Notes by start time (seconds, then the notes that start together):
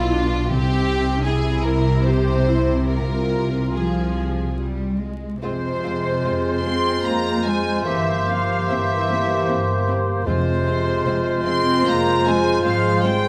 Already playing: B1 B2 E4 F4
0.14 D4
0.50 C2 C3 C4 G4
1.25 E4 G#4
1.64 A#4
2.03 G4 C5
2.48 E4
2.89 F4 A#4
3.75 F3 G#4
4.60 G3
5.01 G#3
5.41 F2 C3 G#3 C4 F4 G#4 C5
5.84 G#3 C4 F4 C5
6.24 F2 G#3 C4 F4 C5
6.64 G#3 C4 F4 C5 C6
7.04 F2 G#3 A#3 C4 F4 C5 A#5
7.45 G#3 C4 F4 C5 G#5
7.83 G1 E3 A#3 C4 E4 G4 C5 E5
7.88 A#3
8.27 F3 A#3 C4 E4 C5 F5
8.68 G1 E3 A#3 C4 E4 C5 E5
9.09 A#3 C4 E4 C5
9.48 G1 A#3 C4 E4 C5
9.87 A#3 C4 E4 C5
10.24 F1 F2 C3 G#3 C4 F4 C5
10.67 G#3 C4 F4 C5
11.06 F1 G#3 C4 F4 C5
11.44 G#3 C4 F4 C5 C6
11.85 F1 G#3 A#3 C4 F4 C5 A#5
12.25 G#3 C4 F4 C5 G#5
12.64 G#1 F3 G#3 C4 F4 C5 F5
13.02 G3 G#3 C4 F4 C5 G5